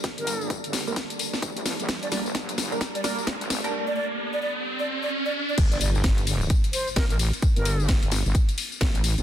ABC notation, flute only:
X:1
M:4/4
L:1/16
Q:"Swing 16ths" 1/4=130
K:Gm
V:1 name="Flute"
z B3 z12 | z d d z6 d d z4 z | z d d z2 d d z2 d z d z d z d | z d d z6 z c z B B z2 |
z B3 z12 |]